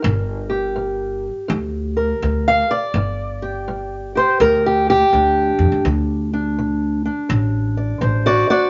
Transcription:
0, 0, Header, 1, 3, 480
1, 0, Start_track
1, 0, Key_signature, -2, "minor"
1, 0, Tempo, 725514
1, 28, Time_signature, 4, 2, 24, 8
1, 5755, End_track
2, 0, Start_track
2, 0, Title_t, "Steel-string acoustic guitar"
2, 0, Program_c, 0, 25
2, 0, Note_on_c, 0, 67, 51
2, 0, Note_on_c, 0, 70, 101
2, 16, Note_on_c, 0, 43, 80
2, 326, Note_off_c, 0, 67, 0
2, 328, Note_on_c, 0, 67, 48
2, 469, Note_off_c, 0, 43, 0
2, 501, Note_on_c, 0, 43, 69
2, 833, Note_off_c, 0, 70, 0
2, 952, Note_off_c, 0, 43, 0
2, 981, Note_on_c, 0, 43, 80
2, 1301, Note_on_c, 0, 70, 50
2, 1432, Note_off_c, 0, 43, 0
2, 1475, Note_on_c, 0, 43, 76
2, 1639, Note_on_c, 0, 77, 104
2, 1789, Note_off_c, 0, 70, 0
2, 1791, Note_on_c, 0, 74, 103
2, 1796, Note_off_c, 0, 77, 0
2, 1920, Note_off_c, 0, 43, 0
2, 1928, Note_off_c, 0, 67, 0
2, 1955, Note_on_c, 0, 43, 80
2, 2265, Note_on_c, 0, 67, 48
2, 2400, Note_off_c, 0, 43, 0
2, 2433, Note_on_c, 0, 43, 74
2, 2741, Note_off_c, 0, 67, 0
2, 2748, Note_on_c, 0, 67, 48
2, 2753, Note_off_c, 0, 74, 0
2, 2760, Note_on_c, 0, 72, 92
2, 2879, Note_off_c, 0, 43, 0
2, 2916, Note_off_c, 0, 72, 0
2, 2916, Note_on_c, 0, 43, 75
2, 2919, Note_on_c, 0, 70, 95
2, 3076, Note_off_c, 0, 70, 0
2, 3077, Note_off_c, 0, 67, 0
2, 3085, Note_on_c, 0, 67, 89
2, 3232, Note_off_c, 0, 67, 0
2, 3240, Note_on_c, 0, 67, 111
2, 3360, Note_off_c, 0, 43, 0
2, 3392, Note_on_c, 0, 43, 72
2, 3398, Note_on_c, 0, 62, 50
2, 3839, Note_off_c, 0, 43, 0
2, 3874, Note_on_c, 0, 50, 81
2, 3877, Note_off_c, 0, 67, 0
2, 4188, Note_off_c, 0, 62, 0
2, 4190, Note_on_c, 0, 62, 50
2, 4319, Note_off_c, 0, 50, 0
2, 4357, Note_on_c, 0, 50, 71
2, 4665, Note_off_c, 0, 62, 0
2, 4667, Note_on_c, 0, 62, 49
2, 4800, Note_off_c, 0, 50, 0
2, 4824, Note_on_c, 0, 50, 73
2, 5143, Note_on_c, 0, 74, 47
2, 5273, Note_off_c, 0, 50, 0
2, 5299, Note_on_c, 0, 50, 77
2, 5304, Note_on_c, 0, 72, 53
2, 5464, Note_on_c, 0, 66, 86
2, 5466, Note_off_c, 0, 74, 0
2, 5469, Note_on_c, 0, 74, 99
2, 5616, Note_off_c, 0, 66, 0
2, 5617, Note_off_c, 0, 74, 0
2, 5624, Note_on_c, 0, 66, 87
2, 5627, Note_on_c, 0, 74, 98
2, 5750, Note_off_c, 0, 50, 0
2, 5755, Note_off_c, 0, 62, 0
2, 5755, Note_off_c, 0, 66, 0
2, 5755, Note_off_c, 0, 72, 0
2, 5755, Note_off_c, 0, 74, 0
2, 5755, End_track
3, 0, Start_track
3, 0, Title_t, "Upright bass"
3, 0, Program_c, 1, 32
3, 28, Note_on_c, 1, 31, 110
3, 842, Note_off_c, 1, 31, 0
3, 991, Note_on_c, 1, 38, 109
3, 1397, Note_off_c, 1, 38, 0
3, 1472, Note_on_c, 1, 38, 90
3, 1733, Note_off_c, 1, 38, 0
3, 1945, Note_on_c, 1, 31, 102
3, 2760, Note_off_c, 1, 31, 0
3, 2911, Note_on_c, 1, 38, 108
3, 3318, Note_off_c, 1, 38, 0
3, 3393, Note_on_c, 1, 38, 85
3, 3654, Note_off_c, 1, 38, 0
3, 3696, Note_on_c, 1, 41, 86
3, 3776, Note_off_c, 1, 41, 0
3, 3783, Note_on_c, 1, 38, 78
3, 3862, Note_off_c, 1, 38, 0
3, 3869, Note_on_c, 1, 38, 99
3, 4681, Note_off_c, 1, 38, 0
3, 4828, Note_on_c, 1, 33, 105
3, 5234, Note_off_c, 1, 33, 0
3, 5302, Note_on_c, 1, 33, 85
3, 5566, Note_off_c, 1, 33, 0
3, 5755, End_track
0, 0, End_of_file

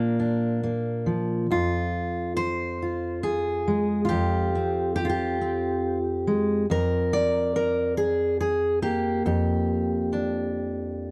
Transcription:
0, 0, Header, 1, 2, 480
1, 0, Start_track
1, 0, Tempo, 870827
1, 835, Time_signature, 6, 3, 24, 8
1, 2269, Tempo, 859599
1, 6175, End_track
2, 0, Start_track
2, 0, Title_t, "Steel-string acoustic guitar"
2, 0, Program_c, 0, 25
2, 0, Note_on_c, 0, 46, 75
2, 0, Note_on_c, 0, 53, 50
2, 0, Note_on_c, 0, 58, 38
2, 0, Note_on_c, 0, 62, 47
2, 0, Note_on_c, 0, 70, 83
2, 100, Note_off_c, 0, 62, 0
2, 107, Note_on_c, 0, 62, 44
2, 343, Note_off_c, 0, 58, 0
2, 350, Note_on_c, 0, 58, 45
2, 583, Note_off_c, 0, 53, 0
2, 586, Note_on_c, 0, 53, 54
2, 802, Note_off_c, 0, 53, 0
2, 805, Note_off_c, 0, 58, 0
2, 805, Note_off_c, 0, 62, 0
2, 830, Note_on_c, 0, 41, 73
2, 832, Note_off_c, 0, 70, 0
2, 833, Note_off_c, 0, 46, 0
2, 835, Note_on_c, 0, 65, 89
2, 1302, Note_off_c, 0, 65, 0
2, 1304, Note_on_c, 0, 72, 105
2, 1556, Note_on_c, 0, 65, 46
2, 1779, Note_off_c, 0, 72, 0
2, 1782, Note_on_c, 0, 68, 90
2, 2026, Note_on_c, 0, 56, 56
2, 2226, Note_off_c, 0, 68, 0
2, 2231, Note_off_c, 0, 65, 0
2, 2231, Note_on_c, 0, 65, 76
2, 2239, Note_off_c, 0, 56, 0
2, 2253, Note_on_c, 0, 67, 95
2, 2264, Note_off_c, 0, 41, 0
2, 2266, Note_on_c, 0, 41, 77
2, 2512, Note_on_c, 0, 60, 45
2, 2731, Note_off_c, 0, 67, 0
2, 2738, Note_on_c, 0, 67, 89
2, 2752, Note_off_c, 0, 65, 0
2, 2789, Note_on_c, 0, 65, 72
2, 2808, Note_off_c, 0, 67, 0
2, 2815, Note_on_c, 0, 67, 81
2, 2987, Note_off_c, 0, 60, 0
2, 2993, Note_on_c, 0, 60, 46
2, 3307, Note_off_c, 0, 65, 0
2, 3473, Note_on_c, 0, 56, 61
2, 3680, Note_off_c, 0, 60, 0
2, 3681, Note_off_c, 0, 56, 0
2, 3701, Note_off_c, 0, 67, 0
2, 3708, Note_off_c, 0, 41, 0
2, 3711, Note_on_c, 0, 41, 79
2, 3718, Note_on_c, 0, 70, 100
2, 3953, Note_on_c, 0, 74, 110
2, 4184, Note_off_c, 0, 70, 0
2, 4191, Note_on_c, 0, 70, 95
2, 4420, Note_off_c, 0, 70, 0
2, 4422, Note_on_c, 0, 68, 89
2, 4657, Note_off_c, 0, 68, 0
2, 4661, Note_off_c, 0, 74, 0
2, 4664, Note_on_c, 0, 68, 82
2, 4896, Note_off_c, 0, 68, 0
2, 4897, Note_on_c, 0, 58, 64
2, 4898, Note_on_c, 0, 67, 87
2, 5132, Note_off_c, 0, 41, 0
2, 5134, Note_off_c, 0, 67, 0
2, 5139, Note_on_c, 0, 41, 72
2, 5141, Note_on_c, 0, 67, 73
2, 5625, Note_on_c, 0, 62, 45
2, 6175, Note_off_c, 0, 41, 0
2, 6175, Note_off_c, 0, 58, 0
2, 6175, Note_off_c, 0, 62, 0
2, 6175, Note_off_c, 0, 67, 0
2, 6175, End_track
0, 0, End_of_file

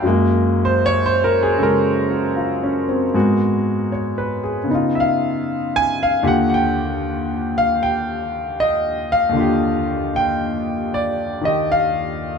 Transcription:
0, 0, Header, 1, 2, 480
1, 0, Start_track
1, 0, Tempo, 775194
1, 25, Time_signature, 4, 2, 24, 8
1, 7667, End_track
2, 0, Start_track
2, 0, Title_t, "Grand piano"
2, 0, Program_c, 0, 0
2, 0, Control_c, 0, 64, 127
2, 15, Note_on_c, 0, 42, 55
2, 21, Note_on_c, 0, 54, 59
2, 33, Control_c, 0, 64, 0
2, 34, Note_on_c, 0, 56, 57
2, 42, Note_on_c, 0, 58, 68
2, 142, Control_c, 0, 64, 127
2, 402, Note_on_c, 0, 72, 83
2, 490, Note_off_c, 0, 72, 0
2, 531, Note_on_c, 0, 73, 101
2, 655, Note_on_c, 0, 72, 85
2, 677, Note_off_c, 0, 73, 0
2, 769, Note_on_c, 0, 70, 78
2, 821, Note_off_c, 0, 72, 0
2, 875, Note_off_c, 0, 70, 0
2, 884, Note_on_c, 0, 68, 77
2, 971, Note_off_c, 0, 68, 0
2, 981, Note_on_c, 0, 49, 43
2, 983, Note_on_c, 0, 69, 52
2, 991, Note_off_c, 0, 56, 0
2, 1001, Note_on_c, 0, 56, 45
2, 1009, Note_on_c, 0, 70, 76
2, 1015, Note_off_c, 0, 69, 0
2, 1306, Note_on_c, 0, 66, 45
2, 1463, Note_on_c, 0, 65, 45
2, 1557, Note_off_c, 0, 66, 0
2, 1631, Note_on_c, 0, 61, 49
2, 1769, Note_off_c, 0, 65, 0
2, 1787, Note_on_c, 0, 60, 50
2, 1880, Note_off_c, 0, 61, 0
2, 1937, Note_off_c, 0, 56, 0
2, 1943, Note_off_c, 0, 42, 0
2, 1945, Note_off_c, 0, 49, 0
2, 1945, Note_on_c, 0, 44, 55
2, 1946, Note_off_c, 0, 54, 0
2, 1947, Note_on_c, 0, 56, 47
2, 1950, Note_on_c, 0, 59, 48
2, 1954, Note_on_c, 0, 66, 59
2, 1956, Note_off_c, 0, 58, 0
2, 1956, Control_c, 0, 64, 0
2, 2038, Note_off_c, 0, 60, 0
2, 2071, Control_c, 0, 64, 127
2, 2414, Note_off_c, 0, 70, 0
2, 2429, Note_on_c, 0, 73, 49
2, 2588, Note_on_c, 0, 71, 54
2, 2732, Note_off_c, 0, 73, 0
2, 2746, Note_on_c, 0, 68, 46
2, 2838, Note_off_c, 0, 71, 0
2, 2872, Note_on_c, 0, 49, 47
2, 2885, Note_off_c, 0, 59, 0
2, 2894, Note_on_c, 0, 59, 41
2, 2907, Note_off_c, 0, 44, 0
2, 2908, Note_off_c, 0, 56, 0
2, 2912, Note_off_c, 0, 66, 0
2, 2915, Note_on_c, 0, 63, 43
2, 2916, Control_c, 0, 64, 0
2, 2939, Note_on_c, 0, 65, 53
2, 2997, Note_off_c, 0, 68, 0
2, 3019, Control_c, 0, 64, 127
2, 3067, Note_on_c, 0, 76, 56
2, 3097, Note_on_c, 0, 77, 78
2, 3121, Note_off_c, 0, 76, 0
2, 3538, Note_off_c, 0, 77, 0
2, 3567, Note_on_c, 0, 80, 100
2, 3713, Note_off_c, 0, 80, 0
2, 3732, Note_on_c, 0, 77, 84
2, 3850, Note_off_c, 0, 49, 0
2, 3853, Note_off_c, 0, 65, 0
2, 3857, Note_on_c, 0, 39, 62
2, 3860, Note_on_c, 0, 50, 55
2, 3861, Note_off_c, 0, 59, 0
2, 3862, Note_on_c, 0, 65, 56
2, 3868, Note_on_c, 0, 67, 70
2, 3872, Note_off_c, 0, 63, 0
2, 3876, Note_off_c, 0, 77, 0
2, 3876, Control_c, 0, 64, 0
2, 3885, Note_on_c, 0, 78, 79
2, 3992, Control_c, 0, 64, 127
2, 4013, Note_off_c, 0, 78, 0
2, 4023, Note_on_c, 0, 78, 62
2, 4050, Note_on_c, 0, 79, 81
2, 4078, Note_off_c, 0, 78, 0
2, 4205, Note_off_c, 0, 79, 0
2, 4692, Note_on_c, 0, 77, 91
2, 4833, Note_off_c, 0, 77, 0
2, 4847, Note_on_c, 0, 79, 82
2, 5293, Note_off_c, 0, 79, 0
2, 5326, Note_on_c, 0, 75, 84
2, 5634, Note_off_c, 0, 75, 0
2, 5648, Note_on_c, 0, 77, 99
2, 5744, Note_off_c, 0, 39, 0
2, 5753, Note_on_c, 0, 39, 59
2, 5765, Note_off_c, 0, 50, 0
2, 5774, Note_on_c, 0, 50, 57
2, 5785, Note_off_c, 0, 65, 0
2, 5788, Note_off_c, 0, 67, 0
2, 5799, Note_on_c, 0, 65, 55
2, 5821, Note_on_c, 0, 67, 62
2, 6250, Note_off_c, 0, 77, 0
2, 6291, Note_on_c, 0, 79, 89
2, 6480, Note_off_c, 0, 79, 0
2, 6775, Note_on_c, 0, 74, 79
2, 7060, Note_off_c, 0, 74, 0
2, 7067, Note_on_c, 0, 51, 43
2, 7074, Note_off_c, 0, 67, 0
2, 7083, Note_on_c, 0, 67, 50
2, 7092, Note_on_c, 0, 75, 80
2, 7235, Note_off_c, 0, 75, 0
2, 7255, Note_on_c, 0, 77, 92
2, 7443, Note_off_c, 0, 77, 0
2, 7667, Note_off_c, 0, 39, 0
2, 7667, Note_off_c, 0, 50, 0
2, 7667, Note_off_c, 0, 51, 0
2, 7667, Note_off_c, 0, 65, 0
2, 7667, Note_off_c, 0, 67, 0
2, 7667, End_track
0, 0, End_of_file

